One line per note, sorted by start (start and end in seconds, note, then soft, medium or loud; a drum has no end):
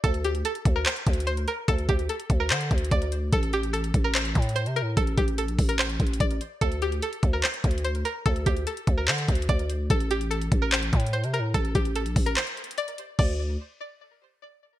0.04 0.43 D2 loud
0.04 0.19 A4 loud
0.04 kick loud
0.04 closed hi-hat medium
0.14 closed hi-hat medium
0.24 0.40 G4 medium
0.24 closed hi-hat medium
0.35 closed hi-hat medium
0.45 0.74 A4 medium
0.45 closed hi-hat medium
0.55 closed hi-hat medium
0.65 0.85 D2 loud
0.65 kick loud
0.65 closed hi-hat medium
0.76 0.84 A#4 medium
0.86 1.25 C5 medium
0.86 clap loud
0.86 closed hi-hat medium
0.96 closed hi-hat medium
1.07 1.46 D2 loud
1.07 kick medium
1.07 closed hi-hat medium
1.13 closed hi-hat medium
1.20 closed hi-hat medium
1.27 1.43 C5 medium
1.27 closed hi-hat medium
1.37 closed hi-hat medium
1.48 1.63 A#4 medium
1.48 closed hi-hat medium
1.68 1.88 D2 loud
1.68 1.84 A4 loud
1.68 kick loud
1.68 closed hi-hat medium
1.78 closed hi-hat medium
1.89 2.08 D2 loud
1.89 2.04 G4 medium
1.89 kick medium
1.89 closed hi-hat medium
1.99 closed hi-hat medium
2.09 2.38 A4 medium
2.09 closed hi-hat medium
2.20 closed hi-hat medium
2.30 2.52 D2 loud
2.30 kick loud
2.30 closed hi-hat medium
2.40 2.48 A#4 medium
2.50 2.70 D3 medium
2.50 2.89 C5 medium
2.50 clap loud
2.50 closed hi-hat medium
2.61 closed hi-hat medium
2.71 2.91 D2 loud
2.71 kick medium
2.71 closed hi-hat medium
2.78 closed hi-hat medium
2.85 closed hi-hat medium
2.91 3.31 D2 loud
2.91 3.30 D5 medium
2.91 kick medium
2.91 closed hi-hat medium
3.02 closed hi-hat medium
3.12 closed hi-hat medium
3.33 3.92 A1 loud
3.33 3.48 A4 loud
3.33 kick loud
3.33 closed hi-hat medium
3.43 closed hi-hat medium
3.53 3.69 G4 loud
3.53 closed hi-hat medium
3.63 closed hi-hat medium
3.73 4.02 A4 medium
3.73 closed hi-hat medium
3.84 closed hi-hat medium
3.94 4.34 A1 loud
3.94 kick loud
3.94 closed hi-hat medium
4.04 4.12 A#4 medium
4.15 4.53 C5 medium
4.15 clap loud
4.15 closed hi-hat medium
4.25 closed hi-hat medium
4.35 4.68 A2 loud
4.35 kick medium
4.35 closed hi-hat medium
4.42 closed hi-hat medium
4.49 closed hi-hat medium
4.56 4.71 C5 medium
4.56 closed hi-hat medium
4.66 4.83 C3 loud
4.66 closed hi-hat medium
4.76 4.92 A#4 medium
4.76 closed hi-hat medium
4.82 4.96 A2 loud
4.97 5.17 A1 loud
4.97 5.13 A4 loud
4.97 kick loud
4.97 closed hi-hat medium
5.07 closed hi-hat medium
5.18 5.50 A1 loud
5.18 5.33 G4 medium
5.18 kick medium
5.18 closed hi-hat medium
5.28 closed hi-hat medium
5.38 5.67 A4 medium
5.38 closed hi-hat loud
5.48 5.58 A#1 loud
5.48 closed hi-hat medium
5.59 5.98 A1 loud
5.59 kick medium
5.59 closed hi-hat soft
5.59 open hi-hat medium
5.69 5.77 A#4 medium
5.69 closed hi-hat medium
5.79 6.18 C5 loud
5.79 clap loud
5.79 closed hi-hat medium
5.90 closed hi-hat medium
6.00 6.19 A1 loud
6.00 kick medium
6.00 closed hi-hat soft
6.07 closed hi-hat medium
6.13 closed hi-hat medium
6.20 6.40 A1 loud
6.20 6.59 D5 medium
6.20 kick medium
6.20 closed hi-hat medium
6.31 closed hi-hat medium
6.41 closed hi-hat medium
6.61 7.01 D2 loud
6.61 6.77 A4 loud
6.61 kick loud
6.61 closed hi-hat medium
6.72 closed hi-hat medium
6.82 6.98 G4 medium
6.82 closed hi-hat medium
6.92 closed hi-hat medium
7.02 7.32 A4 medium
7.02 closed hi-hat medium
7.13 closed hi-hat medium
7.23 7.43 D2 loud
7.23 kick loud
7.23 closed hi-hat medium
7.33 7.41 A#4 medium
7.43 7.82 C5 medium
7.43 clap loud
7.43 closed hi-hat medium
7.54 closed hi-hat medium
7.64 8.04 D2 loud
7.64 kick medium
7.64 closed hi-hat medium
7.71 closed hi-hat medium
7.78 closed hi-hat medium
7.84 8.00 C5 medium
7.84 closed hi-hat medium
7.95 closed hi-hat medium
8.05 8.21 A#4 medium
8.05 closed hi-hat medium
8.26 8.45 D2 loud
8.26 8.41 A4 loud
8.26 kick loud
8.26 closed hi-hat medium
8.36 closed hi-hat medium
8.46 8.66 D2 loud
8.46 8.62 G4 medium
8.46 kick medium
8.46 closed hi-hat medium
8.57 closed hi-hat medium
8.67 8.96 A4 medium
8.67 closed hi-hat medium
8.77 closed hi-hat medium
8.87 9.09 D2 loud
8.87 kick loud
8.87 closed hi-hat medium
8.98 9.05 A#4 medium
9.08 9.27 D3 medium
9.08 9.47 C5 medium
9.08 clap loud
9.08 closed hi-hat medium
9.18 closed hi-hat medium
9.28 9.48 D2 loud
9.28 kick medium
9.28 closed hi-hat medium
9.35 closed hi-hat medium
9.42 closed hi-hat medium
9.49 9.88 D2 loud
9.49 9.88 D5 medium
9.49 kick medium
9.49 closed hi-hat medium
9.59 closed hi-hat medium
9.70 closed hi-hat medium
9.90 10.49 A1 loud
9.90 10.06 A4 loud
9.90 kick loud
9.90 closed hi-hat medium
10.00 closed hi-hat medium
10.11 10.26 G4 loud
10.11 closed hi-hat medium
10.21 closed hi-hat medium
10.31 10.60 A4 medium
10.31 closed hi-hat medium
10.41 closed hi-hat medium
10.52 10.91 A1 loud
10.52 kick loud
10.52 closed hi-hat medium
10.62 10.70 A#4 medium
10.72 11.11 C5 medium
10.72 clap loud
10.72 closed hi-hat medium
10.83 closed hi-hat medium
10.93 11.25 A2 loud
10.93 kick medium
10.93 closed hi-hat medium
11.00 closed hi-hat medium
11.06 closed hi-hat medium
11.13 11.29 C5 medium
11.13 closed hi-hat medium
11.24 11.41 C3 loud
11.24 closed hi-hat medium
11.34 11.49 A#4 medium
11.34 closed hi-hat medium
11.39 11.54 A2 loud
11.54 11.74 A1 loud
11.54 11.70 A4 loud
11.54 kick loud
11.54 closed hi-hat medium
11.65 closed hi-hat medium
11.75 12.07 A1 loud
11.75 11.91 G4 medium
11.75 kick medium
11.75 closed hi-hat medium
11.85 closed hi-hat medium
11.96 12.25 A4 medium
11.96 closed hi-hat medium
12.06 12.16 A#1 loud
12.06 closed hi-hat medium
12.16 12.36 A1 loud
12.16 kick loud
12.16 closed hi-hat soft
12.16 open hi-hat medium
12.26 12.34 A#4 medium
12.26 closed hi-hat medium
12.37 12.75 C5 loud
12.37 clap loud
12.37 closed hi-hat medium
12.47 closed hi-hat medium
12.57 closed hi-hat soft
12.64 closed hi-hat medium
12.71 closed hi-hat medium
12.78 13.17 D5 medium
12.78 closed hi-hat medium
12.88 closed hi-hat medium
12.98 closed hi-hat medium
13.19 13.57 D2 loud
13.19 13.38 D5 medium
13.19 kick loud
13.19 crash medium